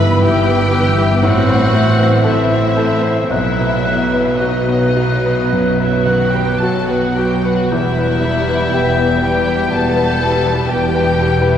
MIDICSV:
0, 0, Header, 1, 10, 480
1, 0, Start_track
1, 0, Key_signature, 1, "minor"
1, 0, Tempo, 993377
1, 1091, Tempo, 1047120
1, 1571, Time_signature, 4, 2, 24, 8
1, 1571, Tempo, 1102941
1, 3491, Tempo, 1008403
1, 4451, Tempo, 964630
1, 5369, End_track
2, 0, Start_track
2, 0, Title_t, "Flute"
2, 0, Program_c, 0, 73
2, 0, Note_on_c, 0, 88, 57
2, 109, Note_off_c, 0, 88, 0
2, 126, Note_on_c, 0, 88, 58
2, 591, Note_off_c, 0, 88, 0
2, 594, Note_on_c, 0, 88, 57
2, 1075, Note_off_c, 0, 88, 0
2, 1082, Note_on_c, 0, 88, 50
2, 1557, Note_off_c, 0, 88, 0
2, 1567, Note_on_c, 0, 90, 42
2, 2040, Note_off_c, 0, 90, 0
2, 2046, Note_on_c, 0, 90, 44
2, 3320, Note_off_c, 0, 90, 0
2, 3479, Note_on_c, 0, 91, 49
2, 4908, Note_off_c, 0, 91, 0
2, 4933, Note_on_c, 0, 91, 46
2, 5369, Note_off_c, 0, 91, 0
2, 5369, End_track
3, 0, Start_track
3, 0, Title_t, "Violin section"
3, 0, Program_c, 1, 48
3, 0, Note_on_c, 1, 83, 75
3, 108, Note_off_c, 1, 83, 0
3, 127, Note_on_c, 1, 79, 71
3, 603, Note_off_c, 1, 79, 0
3, 604, Note_on_c, 1, 78, 72
3, 1090, Note_off_c, 1, 78, 0
3, 1094, Note_on_c, 1, 76, 60
3, 1563, Note_off_c, 1, 76, 0
3, 1568, Note_on_c, 1, 76, 58
3, 2040, Note_off_c, 1, 76, 0
3, 2054, Note_on_c, 1, 75, 50
3, 2652, Note_off_c, 1, 75, 0
3, 2653, Note_on_c, 1, 76, 46
3, 2768, Note_off_c, 1, 76, 0
3, 2771, Note_on_c, 1, 78, 46
3, 2884, Note_on_c, 1, 79, 47
3, 2889, Note_off_c, 1, 78, 0
3, 3001, Note_on_c, 1, 81, 50
3, 3005, Note_off_c, 1, 79, 0
3, 3124, Note_on_c, 1, 78, 44
3, 3125, Note_off_c, 1, 81, 0
3, 3249, Note_off_c, 1, 78, 0
3, 3254, Note_on_c, 1, 79, 46
3, 3371, Note_on_c, 1, 78, 45
3, 3374, Note_off_c, 1, 79, 0
3, 3489, Note_off_c, 1, 78, 0
3, 3492, Note_on_c, 1, 76, 61
3, 4201, Note_off_c, 1, 76, 0
3, 4217, Note_on_c, 1, 79, 59
3, 4448, Note_on_c, 1, 81, 65
3, 4452, Note_off_c, 1, 79, 0
3, 4933, Note_off_c, 1, 81, 0
3, 4935, Note_on_c, 1, 79, 63
3, 5369, Note_off_c, 1, 79, 0
3, 5369, End_track
4, 0, Start_track
4, 0, Title_t, "Clarinet"
4, 0, Program_c, 2, 71
4, 0, Note_on_c, 2, 71, 60
4, 106, Note_off_c, 2, 71, 0
4, 122, Note_on_c, 2, 71, 58
4, 606, Note_on_c, 2, 72, 57
4, 613, Note_off_c, 2, 71, 0
4, 1091, Note_off_c, 2, 72, 0
4, 1093, Note_on_c, 2, 72, 48
4, 1570, Note_on_c, 2, 71, 44
4, 1577, Note_off_c, 2, 72, 0
4, 2042, Note_off_c, 2, 71, 0
4, 2045, Note_on_c, 2, 71, 48
4, 3319, Note_off_c, 2, 71, 0
4, 3490, Note_on_c, 2, 71, 48
4, 4915, Note_off_c, 2, 71, 0
4, 4931, Note_on_c, 2, 71, 48
4, 5369, Note_off_c, 2, 71, 0
4, 5369, End_track
5, 0, Start_track
5, 0, Title_t, "Grand piano"
5, 0, Program_c, 3, 0
5, 0, Control_c, 3, 64, 127
5, 0, Note_on_c, 3, 43, 63
5, 0, Note_on_c, 3, 64, 53
5, 0, Note_on_c, 3, 71, 44
5, 77, Note_off_c, 3, 64, 0
5, 111, Note_on_c, 3, 64, 50
5, 196, Note_off_c, 3, 71, 0
5, 237, Note_on_c, 3, 59, 47
5, 311, Note_off_c, 3, 64, 0
5, 360, Note_on_c, 3, 71, 50
5, 433, Note_off_c, 3, 59, 0
5, 472, Note_on_c, 3, 64, 45
5, 553, Note_off_c, 3, 71, 0
5, 579, Note_off_c, 3, 43, 0
5, 593, Note_on_c, 3, 45, 56
5, 598, Note_off_c, 3, 64, 0
5, 614, Control_c, 3, 64, 0
5, 704, Control_c, 3, 64, 127
5, 719, Note_on_c, 3, 72, 48
5, 838, Note_on_c, 3, 64, 47
5, 916, Note_off_c, 3, 72, 0
5, 968, Note_on_c, 3, 72, 38
5, 1038, Note_off_c, 3, 64, 0
5, 1080, Note_on_c, 3, 69, 44
5, 1161, Note_off_c, 3, 72, 0
5, 1203, Note_on_c, 3, 64, 38
5, 1274, Note_off_c, 3, 69, 0
5, 1323, Note_on_c, 3, 69, 40
5, 1396, Note_off_c, 3, 64, 0
5, 1439, Note_on_c, 3, 72, 43
5, 1519, Note_off_c, 3, 69, 0
5, 1547, Note_off_c, 3, 45, 0
5, 1567, Note_off_c, 3, 72, 0
5, 1570, Note_on_c, 3, 35, 40
5, 1580, Control_c, 3, 64, 0
5, 1653, Control_c, 3, 64, 127
5, 1692, Note_on_c, 3, 71, 36
5, 1811, Note_on_c, 3, 59, 37
5, 1883, Note_off_c, 3, 71, 0
5, 1931, Note_on_c, 3, 71, 34
5, 2003, Note_off_c, 3, 59, 0
5, 2049, Note_on_c, 3, 66, 34
5, 2124, Note_off_c, 3, 71, 0
5, 2167, Note_on_c, 3, 59, 33
5, 2243, Note_off_c, 3, 66, 0
5, 2291, Note_on_c, 3, 66, 33
5, 2362, Note_off_c, 3, 59, 0
5, 2417, Note_on_c, 3, 71, 36
5, 2483, Note_off_c, 3, 66, 0
5, 2514, Note_off_c, 3, 35, 0
5, 2537, Note_on_c, 3, 42, 34
5, 2605, Note_off_c, 3, 71, 0
5, 2653, Note_on_c, 3, 71, 32
5, 2724, Note_off_c, 3, 42, 0
5, 2775, Note_on_c, 3, 59, 36
5, 2841, Note_off_c, 3, 71, 0
5, 2896, Note_on_c, 3, 71, 32
5, 2963, Note_off_c, 3, 59, 0
5, 3014, Note_on_c, 3, 66, 36
5, 3084, Note_off_c, 3, 71, 0
5, 3135, Note_on_c, 3, 59, 33
5, 3205, Note_off_c, 3, 66, 0
5, 3259, Note_on_c, 3, 66, 34
5, 3328, Note_off_c, 3, 59, 0
5, 3376, Note_on_c, 3, 71, 38
5, 3448, Note_off_c, 3, 66, 0
5, 3492, Note_off_c, 3, 71, 0
5, 3492, Note_on_c, 3, 40, 45
5, 3498, Control_c, 3, 64, 0
5, 3592, Control_c, 3, 64, 127
5, 3618, Note_on_c, 3, 71, 41
5, 3742, Note_on_c, 3, 59, 38
5, 3810, Note_off_c, 3, 71, 0
5, 3859, Note_on_c, 3, 71, 39
5, 3931, Note_off_c, 3, 59, 0
5, 3975, Note_on_c, 3, 67, 42
5, 4049, Note_off_c, 3, 71, 0
5, 4094, Note_on_c, 3, 59, 38
5, 4166, Note_off_c, 3, 67, 0
5, 4209, Note_on_c, 3, 67, 41
5, 4285, Note_off_c, 3, 59, 0
5, 4325, Note_on_c, 3, 71, 42
5, 4401, Note_off_c, 3, 67, 0
5, 4433, Note_off_c, 3, 40, 0
5, 4440, Note_on_c, 3, 47, 41
5, 4520, Note_off_c, 3, 71, 0
5, 4563, Note_on_c, 3, 71, 41
5, 4641, Note_off_c, 3, 47, 0
5, 4693, Note_on_c, 3, 59, 41
5, 4762, Note_off_c, 3, 71, 0
5, 4817, Note_on_c, 3, 71, 38
5, 4886, Note_off_c, 3, 59, 0
5, 4927, Note_on_c, 3, 67, 46
5, 5007, Note_off_c, 3, 71, 0
5, 5052, Note_on_c, 3, 59, 37
5, 5121, Note_off_c, 3, 67, 0
5, 5172, Note_on_c, 3, 67, 40
5, 5243, Note_off_c, 3, 59, 0
5, 5286, Note_on_c, 3, 71, 45
5, 5362, Note_off_c, 3, 67, 0
5, 5369, Note_off_c, 3, 71, 0
5, 5369, End_track
6, 0, Start_track
6, 0, Title_t, "Violin section"
6, 0, Program_c, 4, 48
6, 0, Note_on_c, 4, 71, 74
6, 107, Note_off_c, 4, 71, 0
6, 126, Note_on_c, 4, 67, 65
6, 603, Note_off_c, 4, 67, 0
6, 603, Note_on_c, 4, 66, 60
6, 1090, Note_off_c, 4, 66, 0
6, 1090, Note_on_c, 4, 64, 48
6, 1566, Note_off_c, 4, 64, 0
6, 1572, Note_on_c, 4, 64, 54
6, 2042, Note_off_c, 4, 64, 0
6, 2059, Note_on_c, 4, 63, 39
6, 2654, Note_off_c, 4, 63, 0
6, 2655, Note_on_c, 4, 64, 38
6, 2771, Note_off_c, 4, 64, 0
6, 2775, Note_on_c, 4, 66, 40
6, 2890, Note_on_c, 4, 67, 42
6, 2891, Note_off_c, 4, 66, 0
6, 3002, Note_on_c, 4, 69, 39
6, 3009, Note_off_c, 4, 67, 0
6, 3125, Note_on_c, 4, 66, 43
6, 3126, Note_off_c, 4, 69, 0
6, 3246, Note_on_c, 4, 67, 38
6, 3249, Note_off_c, 4, 66, 0
6, 3368, Note_on_c, 4, 66, 42
6, 3371, Note_off_c, 4, 67, 0
6, 3485, Note_off_c, 4, 66, 0
6, 3490, Note_on_c, 4, 64, 61
6, 4214, Note_off_c, 4, 64, 0
6, 4216, Note_on_c, 4, 67, 48
6, 4443, Note_on_c, 4, 69, 60
6, 4451, Note_off_c, 4, 67, 0
6, 4914, Note_on_c, 4, 67, 53
6, 4931, Note_off_c, 4, 69, 0
6, 5369, Note_off_c, 4, 67, 0
6, 5369, End_track
7, 0, Start_track
7, 0, Title_t, "French horn section"
7, 0, Program_c, 5, 60
7, 0, Note_on_c, 5, 52, 60
7, 0, Note_on_c, 5, 59, 48
7, 588, Note_off_c, 5, 59, 0
7, 591, Note_on_c, 5, 60, 50
7, 1489, Note_off_c, 5, 52, 0
7, 1489, Note_off_c, 5, 60, 0
7, 1567, Note_on_c, 5, 54, 47
7, 1567, Note_on_c, 5, 59, 44
7, 3320, Note_off_c, 5, 54, 0
7, 3338, Note_off_c, 5, 59, 0
7, 3484, Note_on_c, 5, 59, 49
7, 3488, Note_on_c, 5, 55, 45
7, 5369, Note_off_c, 5, 55, 0
7, 5369, Note_off_c, 5, 59, 0
7, 5369, End_track
8, 0, Start_track
8, 0, Title_t, "Viola section"
8, 0, Program_c, 6, 48
8, 0, Note_on_c, 6, 52, 48
8, 0, Note_on_c, 6, 59, 48
8, 354, Note_off_c, 6, 59, 0
8, 355, Note_off_c, 6, 52, 0
8, 362, Note_on_c, 6, 52, 43
8, 363, Note_on_c, 6, 59, 45
8, 591, Note_off_c, 6, 52, 0
8, 597, Note_on_c, 6, 52, 46
8, 598, Note_off_c, 6, 59, 0
8, 599, Note_on_c, 6, 60, 48
8, 834, Note_off_c, 6, 60, 0
8, 836, Note_off_c, 6, 52, 0
8, 840, Note_on_c, 6, 60, 46
8, 843, Note_on_c, 6, 52, 47
8, 1312, Note_off_c, 6, 52, 0
8, 1313, Note_off_c, 6, 60, 0
8, 1318, Note_on_c, 6, 52, 35
8, 1318, Note_on_c, 6, 60, 37
8, 1561, Note_off_c, 6, 52, 0
8, 1561, Note_off_c, 6, 60, 0
8, 1806, Note_on_c, 6, 54, 36
8, 1806, Note_on_c, 6, 59, 35
8, 2281, Note_off_c, 6, 54, 0
8, 2281, Note_off_c, 6, 59, 0
8, 2288, Note_on_c, 6, 54, 34
8, 2288, Note_on_c, 6, 59, 36
8, 2757, Note_off_c, 6, 54, 0
8, 2757, Note_off_c, 6, 59, 0
8, 2764, Note_on_c, 6, 59, 35
8, 2765, Note_on_c, 6, 54, 37
8, 3236, Note_off_c, 6, 54, 0
8, 3238, Note_off_c, 6, 59, 0
8, 3241, Note_on_c, 6, 54, 33
8, 3243, Note_on_c, 6, 59, 30
8, 3478, Note_off_c, 6, 59, 0
8, 3480, Note_off_c, 6, 54, 0
8, 3482, Note_on_c, 6, 52, 36
8, 3483, Note_on_c, 6, 59, 39
8, 3714, Note_off_c, 6, 52, 0
8, 3715, Note_off_c, 6, 59, 0
8, 3722, Note_on_c, 6, 55, 37
8, 3724, Note_on_c, 6, 64, 35
8, 3969, Note_off_c, 6, 55, 0
8, 3970, Note_off_c, 6, 64, 0
8, 3970, Note_on_c, 6, 52, 42
8, 3970, Note_on_c, 6, 59, 40
8, 4203, Note_on_c, 6, 64, 37
8, 4208, Note_on_c, 6, 55, 36
8, 4211, Note_off_c, 6, 52, 0
8, 4211, Note_off_c, 6, 59, 0
8, 4443, Note_on_c, 6, 59, 43
8, 4445, Note_off_c, 6, 64, 0
8, 4446, Note_on_c, 6, 52, 42
8, 4447, Note_off_c, 6, 55, 0
8, 4673, Note_off_c, 6, 59, 0
8, 4675, Note_off_c, 6, 52, 0
8, 4682, Note_on_c, 6, 55, 37
8, 4682, Note_on_c, 6, 64, 36
8, 4924, Note_on_c, 6, 52, 44
8, 4928, Note_on_c, 6, 59, 38
8, 4929, Note_off_c, 6, 55, 0
8, 4929, Note_off_c, 6, 64, 0
8, 5157, Note_on_c, 6, 55, 37
8, 5157, Note_on_c, 6, 64, 38
8, 5167, Note_off_c, 6, 52, 0
8, 5169, Note_off_c, 6, 59, 0
8, 5369, Note_off_c, 6, 55, 0
8, 5369, Note_off_c, 6, 64, 0
8, 5369, End_track
9, 0, Start_track
9, 0, Title_t, "Cello section"
9, 0, Program_c, 7, 48
9, 0, Note_on_c, 7, 43, 58
9, 71, Note_off_c, 7, 43, 0
9, 126, Note_on_c, 7, 43, 66
9, 547, Note_off_c, 7, 43, 0
9, 604, Note_on_c, 7, 45, 53
9, 1032, Note_off_c, 7, 45, 0
9, 1092, Note_on_c, 7, 45, 52
9, 1513, Note_off_c, 7, 45, 0
9, 1568, Note_on_c, 7, 47, 45
9, 1993, Note_off_c, 7, 47, 0
9, 2051, Note_on_c, 7, 47, 48
9, 2751, Note_off_c, 7, 47, 0
9, 2766, Note_on_c, 7, 51, 43
9, 3004, Note_on_c, 7, 54, 43
9, 3006, Note_off_c, 7, 51, 0
9, 3479, Note_off_c, 7, 54, 0
9, 3483, Note_on_c, 7, 40, 49
9, 3916, Note_off_c, 7, 40, 0
9, 3972, Note_on_c, 7, 40, 51
9, 4393, Note_off_c, 7, 40, 0
9, 4448, Note_on_c, 7, 40, 47
9, 4877, Note_off_c, 7, 40, 0
9, 4935, Note_on_c, 7, 40, 54
9, 5353, Note_off_c, 7, 40, 0
9, 5369, End_track
10, 0, Start_track
10, 0, Title_t, "Double bass section"
10, 0, Program_c, 8, 48
10, 0, Note_on_c, 8, 31, 61
10, 74, Note_off_c, 8, 31, 0
10, 126, Note_on_c, 8, 31, 60
10, 547, Note_off_c, 8, 31, 0
10, 605, Note_on_c, 8, 33, 51
10, 1032, Note_off_c, 8, 33, 0
10, 1093, Note_on_c, 8, 33, 51
10, 1513, Note_off_c, 8, 33, 0
10, 1567, Note_on_c, 8, 35, 45
10, 1992, Note_off_c, 8, 35, 0
10, 2046, Note_on_c, 8, 35, 42
10, 2473, Note_off_c, 8, 35, 0
10, 2528, Note_on_c, 8, 35, 37
10, 2949, Note_off_c, 8, 35, 0
10, 3003, Note_on_c, 8, 35, 41
10, 3433, Note_off_c, 8, 35, 0
10, 3487, Note_on_c, 8, 28, 47
10, 3918, Note_off_c, 8, 28, 0
10, 3972, Note_on_c, 8, 28, 45
10, 4393, Note_off_c, 8, 28, 0
10, 4448, Note_on_c, 8, 28, 47
10, 4877, Note_off_c, 8, 28, 0
10, 4932, Note_on_c, 8, 28, 49
10, 5352, Note_off_c, 8, 28, 0
10, 5369, End_track
0, 0, End_of_file